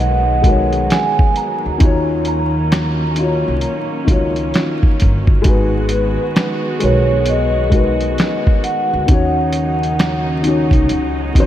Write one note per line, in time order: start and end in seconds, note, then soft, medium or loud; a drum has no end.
0.00 0.87 B1 medium
0.00 1.77 D#3 medium
0.00 5.41 F#3 medium
0.00 0.42 G#3 loud
0.00 1.77 G#3 medium
0.00 1.77 B3 medium
0.00 0.44 D#4 loud
0.00 0.45 F#4 loud
0.00 0.47 A#4 medium
0.00 1.83 B4 loud
0.00 0.93 F#5 medium
0.42 1.32 G#3 medium
0.42 1.33 D#4 medium
0.42 1.34 F#4 medium
0.42 kick medium
0.42 closed hi-hat medium
0.47 1.35 A#4 medium
0.47 1.36 C#5 loud
0.73 closed hi-hat soft
0.90 1.33 G#5 medium
0.90 finger snap medium
0.90 snare medium
0.90 closed hi-hat medium
1.19 kick medium
1.36 2.26 A#5 medium
1.36 closed hi-hat medium
1.66 1.81 D2 medium
1.78 3.43 D#2 medium
1.78 2.68 D#3 loud
1.78 9.04 D#3 medium
1.78 5.41 A#3 medium
1.78 5.41 C#4 medium
1.78 2.69 D#4 medium
1.78 2.70 F4 medium
1.78 kick loud
1.78 closed hi-hat medium
1.83 2.71 F#4 medium
1.83 2.72 C#5 loud
2.25 4.96 A#5 loud
2.25 closed hi-hat medium
2.72 finger snap loud
2.72 snare loud
2.72 closed hi-hat medium
3.15 3.79 D#3 medium
3.15 3.80 D#4 medium
3.15 3.81 F4 medium
3.15 closed hi-hat medium
3.21 3.81 F#4 medium
3.21 3.82 C#5 medium
3.48 3.63 C2 medium
3.61 closed hi-hat medium
4.05 4.50 C#2 medium
4.05 4.96 D#3 loud
4.05 4.96 D#4 medium
4.05 4.97 F4 medium
4.05 kick medium
4.05 closed hi-hat medium
4.10 4.98 F#4 medium
4.10 4.99 C#5 loud
4.36 closed hi-hat soft
4.54 finger snap medium
4.54 snare medium
4.54 closed hi-hat medium
4.83 kick medium
5.00 5.43 G1 medium
5.00 kick medium
5.00 closed hi-hat medium
5.27 kick medium
5.42 6.16 G#1 loud
5.42 6.32 G#3 loud
5.42 9.05 G#3 medium
5.42 9.05 B3 medium
5.42 6.33 D#4 medium
5.42 9.05 F#4 medium
5.42 6.34 F#4 loud
5.42 kick loud
5.42 closed hi-hat medium
5.47 6.35 G#4 loud
5.47 6.36 B4 loud
5.89 6.84 B4 medium
5.89 closed hi-hat medium
6.36 finger snap loud
6.36 snare loud
6.36 closed hi-hat medium
6.79 8.14 B1 medium
6.79 7.43 G#3 medium
6.79 7.43 D#4 medium
6.79 7.44 F#4 medium
6.79 closed hi-hat medium
6.83 7.45 A#4 medium
6.83 7.46 B4 loud
6.83 7.25 C#5 medium
7.26 8.15 D#5 loud
7.26 closed hi-hat medium
7.69 8.60 G#3 medium
7.69 8.61 D#4 medium
7.69 8.61 F#4 medium
7.69 kick medium
7.69 closed hi-hat medium
7.74 8.62 A#4 medium
7.74 8.63 B4 loud
8.01 closed hi-hat soft
8.18 finger snap medium
8.18 snare loud
8.18 closed hi-hat medium
8.47 kick medium
8.64 11.46 F#5 medium
8.64 closed hi-hat medium
8.93 9.08 D2 medium
9.06 10.70 D#2 medium
9.06 11.46 C#3 medium
9.06 9.96 D#3 loud
9.06 11.46 F#3 medium
9.06 10.88 A#3 medium
9.06 9.98 C#4 loud
9.06 9.97 D#4 loud
9.06 11.46 D#4 medium
9.06 kick loud
9.06 closed hi-hat medium
9.11 9.99 F#4 loud
9.11 10.00 C#5 loud
9.53 closed hi-hat medium
9.83 closed hi-hat soft
9.99 finger snap loud
9.99 snare loud
9.99 closed hi-hat medium
10.42 11.06 D#3 medium
10.42 11.07 C#4 medium
10.42 11.06 D#4 medium
10.42 closed hi-hat medium
10.47 11.08 F#4 medium
10.47 11.09 C#5 medium
10.71 10.88 C2 medium
10.71 kick medium
10.71 closed hi-hat soft
10.89 11.33 C#2 medium
10.89 11.46 G#3 medium
10.89 closed hi-hat medium
11.33 11.46 D#2 medium
11.33 11.46 D#3 medium
11.33 11.46 C#4 medium
11.33 11.46 D#4 medium
11.33 kick medium
11.33 closed hi-hat medium
11.38 11.46 F#4 medium
11.38 11.46 C5 medium